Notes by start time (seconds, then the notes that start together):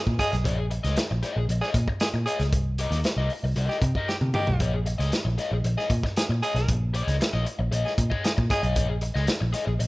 0.07 A#2, kick
0.19 G#4 C#5 D#5, kick, closed hi-hat
0.32 B1, muted overdriven electric guitar stroke, snare, closed hi-hat
0.44 A#1 G#4 C#5 D#5, kick, closed hi-hat
0.58 muted overdriven electric guitar stroke
0.70 muted overdriven electric guitar stroke, closed hi-hat
0.84 C#2 G#4 C#5 D#5, snare, closed hi-hat
0.96 muted overdriven electric guitar stroke, snare, closed hi-hat
1.11 A#1, muted overdriven electric guitar stroke
1.23 G#4 C#5 D#5, snare, closed hi-hat
1.36 A#1, muted overdriven electric guitar stroke
1.49 A#1, muted overdriven electric guitar stroke, closed hi-hat
1.61 G#4 C#5 D#5, snare
1.74 A#2, muted overdriven electric guitar stroke, kick, closed hi-hat
1.88 muted overdriven electric guitar stroke, kick
2.00 G#4, snare, closed hi-hat
2.14 A#2, muted overdriven electric guitar stroke
2.26 G#4 C#5 D#5, closed hi-hat
2.39 C#2, muted overdriven electric guitar stroke, snare, closed hi-hat
2.53 C2, kick, closed hi-hat
2.78 G4 A#4 D#5, closed hi-hat
2.91 D#2, snare, closed hi-hat
3.04 muted overdriven electric guitar stroke, snare, closed hi-hat
3.17 C2 G4 A#4 D#5
3.30 muted overdriven electric guitar stroke, open hi-hat
3.44 C2, muted overdriven electric guitar stroke
3.56 C2 G4 A#4 D#5, closed hi-hat
3.69 G4, snare
3.82 C3, muted overdriven electric guitar stroke, kick, closed hi-hat
3.95 G4 A#4 D#5, kick
4.08 G4, muted overdriven electric guitar stroke, snare
4.21 C3, high tom
4.34 G4 A#4 D#5, mid tom
4.47 B1, muted overdriven electric guitar stroke, floor tom
4.60 A#1 G#4 C#5 D#5, kick, closed hi-hat
4.73 muted overdriven electric guitar stroke
4.86 muted overdriven electric guitar stroke, closed hi-hat
4.98 C#2 G#4 C#5 D#5, snare, closed hi-hat
5.12 muted overdriven electric guitar stroke, snare, closed hi-hat
5.25 A#1, muted overdriven electric guitar stroke
5.38 G#4 C#5 D#5, snare, closed hi-hat
5.52 A#1, muted overdriven electric guitar stroke
5.64 A#1, muted overdriven electric guitar stroke, closed hi-hat
5.77 G#4 C#5 D#5, snare
5.90 A#2, muted overdriven electric guitar stroke, kick, closed hi-hat
6.03 muted overdriven electric guitar stroke, kick, snare
6.16 G#4, snare, closed hi-hat
6.29 A#2, muted overdriven electric guitar stroke
6.42 G#4 C#5 D#5, closed hi-hat
6.55 B1, muted overdriven electric guitar stroke, snare, closed hi-hat
6.68 A#1, kick, closed hi-hat
6.94 G#4 C#5 D#5, closed hi-hat
7.08 C#2, snare, closed hi-hat
7.21 muted overdriven electric guitar stroke, snare, closed hi-hat
7.33 A#1 G#4 C#5 D#5
7.46 muted overdriven electric guitar stroke, closed hi-hat
7.59 A#1, muted overdriven electric guitar stroke
7.71 A#1 G#4 C#5 D#5, closed hi-hat
7.85 G#4, snare
7.98 A#2, muted overdriven electric guitar stroke, kick, closed hi-hat
8.10 G#4 C#5 D#5, kick
8.24 G#4, muted overdriven electric guitar stroke, snare, closed hi-hat
8.37 A#2, muted overdriven electric guitar stroke, kick
8.50 G#4 C#5 D#5, kick, snare, closed hi-hat
8.63 B1 G#4 C#5 D#5, closed hi-hat
8.76 A#1 G#4 C#5 D#5, kick, closed hi-hat
8.89 muted overdriven electric guitar stroke
9.01 muted overdriven electric guitar stroke, closed hi-hat
9.14 C#2 G#4 C#5 D#5, snare
9.27 muted overdriven electric guitar stroke, snare, closed hi-hat
9.40 A#1, muted overdriven electric guitar stroke
9.53 G#4 C#5 D#5, snare, closed hi-hat
9.66 A#1, muted overdriven electric guitar stroke
9.79 A#1, muted overdriven electric guitar stroke, closed hi-hat